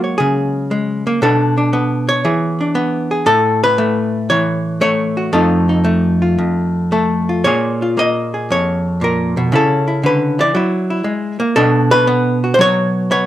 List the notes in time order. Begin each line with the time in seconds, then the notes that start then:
Already playing: F#3 G#3 A#3 F#4
0.04 C#5
0.18 C#3 G#4
0.71 G#3
1.07 A#3
1.22 B2 B3 D4 A4
1.58 D4
1.73 B3
2.09 C#5
2.25 E3 G#4
2.61 D4
2.75 B3
3.11 G#4
3.26 A2 A4
3.64 B4
3.78 A3
4.30 E3 C#5
4.81 A3 C#5
5.17 F#4
5.33 F2 A3 D#4 F4 A4
5.69 D#4
5.84 A3
6.22 F4
6.38 F2
6.92 A3 A4
7.29 F4
7.44 A#2 A#3 F4 G#4 C#5
7.82 F4
7.97 A#3 D#5
8.34 G#4
8.50 F2 C#5
9.01 A#2 A#4
9.37 B2
9.52 C#3 C#4 E4 A4
9.88 E4
10.03 D3 B4
10.39 E3 D5
10.55 F#3 E4
10.90 E4
11.04 G#3
11.40 A#3
11.56 B2 B3 D4 A4
11.91 B4
12.07 B3
12.44 F#4
12.54 C5
12.59 F#3 C#5
13.11 B3 C#5